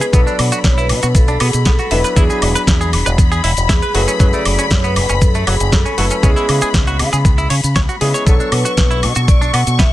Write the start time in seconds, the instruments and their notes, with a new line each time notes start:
Already playing: grand piano B3 C#4 E4 G#4, vibraphone B4, string section B5
0.01 clean electric guitar G#4, closed hi-hat, cabasa
0.12 fingered electric bass B1, grand piano F#3 B3 D4 A4 D5, clean electric guitar B3, string section B5, kick, closed hi-hat, cabasa, maracas
0.27 clean electric guitar D4, vibraphone D5, cabasa, maracas
0.39 fingered electric bass B2, open hi-hat, high woodblock
0.52 clean electric guitar F#4, closed hi-hat, cabasa, maracas
0.64 fingered electric bass B1, vibraphone C#5, kick, snare, closed hi-hat, cabasa, maracas
0.78 clean electric guitar E4, vibraphone B4, cabasa, maracas
0.89 fingered electric bass B2, open hi-hat, high woodblock
1.03 fingered electric bass B2, clean electric guitar F#4, closed hi-hat, cabasa, maracas
1.15 fingered electric bass B1, vibraphone A4, kick, closed hi-hat, cabasa, maracas
1.28 clean electric guitar D4, closed hi-hat, cabasa, maracas
1.40 fingered electric bass B2, clean electric guitar B3, vibraphone G#4, open hi-hat, high woodblock
1.53 fingered electric bass B2, closed hi-hat, cabasa, maracas
1.65 fingered electric bass B1, clean electric guitar B3, vibraphone A4, kick, snare, closed hi-hat, cabasa, maracas
1.79 clean electric guitar F#4, closed hi-hat, cabasa, maracas
1.91 fingered electric bass E1, grand piano F#3 B3 D4 E4 B4, vibraphone B4, clean electric guitar E5, open hi-hat
2.04 clean electric guitar B4, closed hi-hat, cabasa, maracas
2.16 fingered electric bass E2, grand piano F#3 B3 D4 E4 G#4, clean electric guitar E4, vibraphone G#4, kick, closed hi-hat, cabasa, maracas
2.30 clean electric guitar G#4, cabasa, maracas
2.42 fingered electric bass E1, open hi-hat, high woodblock
2.55 clean electric guitar B4, muted fingered electric bass stroke, closed hi-hat, cabasa, maracas
2.67 fingered electric bass E2, kick, snare, closed hi-hat, cabasa, maracas
2.81 clean electric guitar G#4, cabasa, maracas
2.93 fingered electric bass E1, open hi-hat, high woodblock
3.06 fingered electric bass E1, clean electric guitar B4, closed hi-hat, cabasa, maracas
3.18 fingered electric bass E2, kick, closed hi-hat, cabasa, maracas
3.32 clean electric guitar G#4, closed hi-hat, cabasa, maracas
3.44 fingered electric bass E1, clean electric guitar E4, open hi-hat
3.57 fingered electric bass E1, closed hi-hat, cabasa, maracas
3.69 fingered electric bass E2, clean electric guitar E4, vibraphone G#4, kick, snare, closed hi-hat, cabasa, maracas
3.82 clean electric guitar B4, closed hi-hat, cabasa, maracas
3.94 fingered electric bass F#1, grand piano F#3 A3 C#4 E4 G#4, clean electric guitar F#4, vibraphone B4, open hi-hat
4.08 clean electric guitar C#4, closed hi-hat, cabasa, maracas
4.19 fingered electric bass F#2, grand piano C#3 F#3 A3 E4 G#4, clean electric guitar F#3, kick, closed hi-hat, cabasa, maracas
4.33 clean electric guitar A3, vibraphone D5, cabasa, maracas
4.45 fingered electric bass F#1, open hi-hat, high woodblock
4.59 clean electric guitar C#4, closed hi-hat, cabasa, maracas
4.70 fingered electric bass F#2, vibraphone C#5, kick, snare, closed hi-hat, cabasa, maracas
4.84 clean electric guitar B3, vibraphone B4, cabasa, maracas
4.96 fingered electric bass F#1, open hi-hat, high woodblock
5.09 fingered electric bass F#1, clean electric guitar C#4, closed hi-hat, cabasa, maracas
5.21 fingered electric bass F#2, vibraphone A4, kick, closed hi-hat, cabasa, maracas
5.35 clean electric guitar A3, closed hi-hat, cabasa, maracas
5.47 fingered electric bass F#1, clean electric guitar F#3, vibraphone G#4, open hi-hat, high woodblock
5.60 fingered electric bass F#1, closed hi-hat, cabasa, maracas
5.72 fingered electric bass F#2, clean electric guitar F#3, vibraphone A4, kick, snare, closed hi-hat, cabasa, maracas
5.85 clean electric guitar C#4, closed hi-hat, cabasa, maracas
5.98 fingered electric bass F#1, grand piano F#3 A3 C#4 E4 A4, clean electric guitar F#4, vibraphone B4, open hi-hat
6.10 clean electric guitar C#4, closed hi-hat, cabasa, maracas
6.22 fingered electric bass C#2, grand piano G#3 B3 C#4 E4 G#4, clean electric guitar C#4, vibraphone G#4, kick, closed hi-hat, cabasa, maracas
6.36 clean electric guitar E4, cabasa, maracas
6.49 fingered electric bass C#3, open hi-hat, high woodblock
6.61 clean electric guitar G#4, muted fingered electric bass stroke, closed hi-hat, cabasa, maracas
6.74 fingered electric bass C#2, kick, snare, closed hi-hat, cabasa, maracas
6.87 clean electric guitar F#4, cabasa, maracas
6.99 fingered electric bass C#3, open hi-hat, high woodblock
7.13 fingered electric bass C#3, clean electric guitar G#4, closed hi-hat, cabasa, maracas
7.25 fingered electric bass C#2, kick, closed hi-hat, cabasa, maracas
7.38 clean electric guitar E4, closed hi-hat, cabasa, maracas
7.50 fingered electric bass C#3, clean electric guitar C#5, open hi-hat
7.63 fingered electric bass C#3, closed hi-hat, cabasa, maracas
7.76 fingered electric bass C#2, clean electric guitar C#5, kick, snare, closed hi-hat, cabasa, maracas
7.89 clean electric guitar F#4, closed hi-hat, cabasa, maracas
8.01 fingered electric bass C#3, grand piano G#3 B3 C#4 E4 G#4, clean electric guitar G#4, open hi-hat
8.14 clean electric guitar C#5, closed hi-hat, cabasa, maracas
8.26 fingered electric bass B1, grand piano F#3 B3 D4 A4 C#5, clean electric guitar B3, vibraphone A4, string section C#6, kick, closed hi-hat, cabasa, maracas
8.40 clean electric guitar D4, cabasa, maracas
8.52 fingered electric bass B2, vibraphone B4, open hi-hat, high woodblock
8.65 clean electric guitar F#4, closed hi-hat, cabasa, maracas
8.77 fingered electric bass B1, kick, snare, closed hi-hat, cabasa, maracas
8.90 clean electric guitar E4, cabasa, maracas
9.03 fingered electric bass B2, open hi-hat, high woodblock
9.15 fingered electric bass B2, clean electric guitar F#4, closed hi-hat, cabasa, maracas
9.28 fingered electric bass B1, vibraphone D5, kick, closed hi-hat, cabasa, maracas
9.41 clean electric guitar D4, closed hi-hat, cabasa, maracas
9.53 fingered electric bass B2, clean electric guitar B3, vibraphone F#5, open hi-hat, high woodblock
9.67 fingered electric bass B2, closed hi-hat, cabasa, maracas
9.79 fingered electric bass B1, clean electric guitar B3, vibraphone E5, kick, snare, closed hi-hat, cabasa, maracas